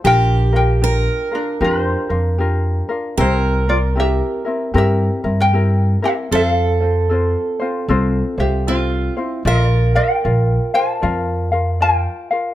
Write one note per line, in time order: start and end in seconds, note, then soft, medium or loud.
0.04 1.06 A#1 medium
0.04 0.53 D4 medium
0.04 0.52 F4 medium
0.04 0.54 G4 medium
0.04 0.83 G4 medium
0.04 0.51 A#4 medium
0.04 0.52 A#4 medium
0.04 0.55 G5 loud
0.53 0.81 D4 soft
0.53 0.81 F4 soft
0.53 0.82 A#4 soft
0.53 1.29 A#4 medium
0.53 1.36 G5 medium
0.82 1.32 D4 medium
0.82 1.31 F4 medium
0.82 1.31 G4 medium
0.82 1.30 A#4 medium
0.82 3.16 A#4 medium
1.31 1.60 D4 soft
1.31 1.61 D4 medium
1.31 1.60 F4 soft
1.31 1.60 A#4 medium
1.31 1.64 A#4 medium
1.61 1.93 F2 medium
1.61 2.10 D4 medium
1.61 2.09 F4 medium
1.61 2.10 G4 medium
1.61 2.08 A#4 medium
1.61 2.86 C5 medium
1.65 2.87 F4 medium
2.09 2.80 F2 medium
2.09 2.38 D4 soft
2.09 2.39 F4 soft
2.09 2.39 A#4 soft
2.38 2.89 D4 medium
2.38 2.89 F4 medium
2.38 2.88 G4 medium
2.38 2.88 A#4 medium
2.89 3.18 D4 soft
2.89 3.19 F4 medium
2.89 3.18 A#4 medium
3.17 4.20 C2 medium
3.17 3.68 C4 medium
3.17 3.68 E4 medium
3.17 3.65 E4 medium
3.17 3.67 G4 medium
3.17 6.41 A#4 medium
3.17 3.66 A#4 medium
3.17 3.69 C5 medium
3.67 3.95 C4 soft
3.67 3.77 F4 medium
3.67 3.95 A#4 soft
3.67 3.77 D5 medium
3.95 4.46 C4 medium
3.95 4.45 E4 medium
3.95 4.45 G4 soft
3.95 4.44 A#4 medium
4.00 4.73 G4 medium
4.00 4.77 E5 medium
4.45 4.73 C4 soft
4.45 4.73 E4 soft
4.45 4.74 A#4 soft
4.74 5.07 G2 loud
4.74 5.24 C4 medium
4.74 5.23 E4 medium
4.74 5.24 G4 medium
4.74 5.36 G4 medium
4.74 5.23 A#4 medium
4.78 5.41 E5 loud
5.24 5.94 G2 medium
5.24 5.52 C4 soft
5.24 5.53 E4 soft
5.24 5.53 A#4 soft
5.40 5.99 A#4 medium
5.40 6.06 G5 loud
5.53 6.03 C4 medium
5.53 6.02 E4 medium
5.53 6.02 G4 medium
5.53 6.01 A#4 medium
6.02 6.30 C4 soft
6.02 6.32 E4 medium
6.02 6.12 G4 medium
6.02 6.32 A#4 medium
6.02 6.13 E5 medium
6.31 7.34 F2 medium
6.31 6.81 C4 medium
6.31 6.80 F4 medium
6.31 6.81 A4 medium
6.31 8.75 A4 medium
6.31 8.64 A4 medium
6.31 6.79 C5 medium
6.31 8.65 F5 medium
6.80 7.09 C4 soft
6.80 7.10 F4 soft
6.80 7.10 C5 soft
7.09 7.60 C4 medium
7.09 7.60 F4 medium
7.09 7.59 A4 medium
7.09 7.58 C5 medium
7.60 7.88 C4 soft
7.60 7.89 F4 medium
7.60 7.89 C5 medium
7.88 8.21 C2 medium
7.88 8.38 C4 medium
7.88 8.38 F4 medium
7.88 8.38 A4 medium
7.88 8.37 C5 medium
8.38 9.08 C2 medium
8.38 8.67 C4 soft
8.38 8.67 F4 medium
8.38 9.43 G4 medium
8.38 8.67 C5 medium
8.38 9.50 E5 medium
8.67 9.17 C4 medium
8.67 9.19 F4 medium
8.67 9.16 F4 medium
8.67 9.17 A4 medium
8.67 9.15 C5 medium
9.17 9.45 C4 soft
9.17 9.42 E4 medium
9.17 9.45 F4 medium
9.17 9.46 C5 medium
9.45 9.96 A#1 loud
9.45 9.95 F4 medium
9.45 9.92 F4 medium
9.45 9.95 A#4 medium
9.45 12.54 A#4 medium
9.45 9.95 D5 medium
9.45 9.66 D#5 medium
9.45 9.94 F5 medium
9.66 9.97 D5 medium
9.95 10.24 F4 soft
9.95 10.70 A#4 medium
9.95 10.24 A#4 soft
9.95 10.24 F5 soft
9.95 10.75 G5 medium
10.24 10.57 A#1 medium
10.24 10.74 F4 medium
10.24 10.74 A#4 medium
10.24 10.73 D5 medium
10.24 10.73 F5 medium
10.74 11.01 F4 soft
10.74 11.02 A#4 medium
10.74 11.78 C5 medium
10.74 11.02 F5 medium
10.74 11.85 A5 medium
11.02 12.05 F2 medium
11.02 11.52 F4 medium
11.02 11.51 A#4 medium
11.02 11.52 D5 medium
11.02 11.50 F5 medium
11.52 11.80 F4 soft
11.52 11.81 A#4 medium
11.52 11.81 F5 soft
11.81 12.31 F4 medium
11.81 12.54 A#4 medium
11.81 12.31 A#4 medium
11.81 12.30 D5 medium
11.81 12.29 F5 medium
11.81 12.54 G5 medium
12.31 12.54 F4 soft
12.31 12.54 A#4 soft
12.31 12.54 F5 medium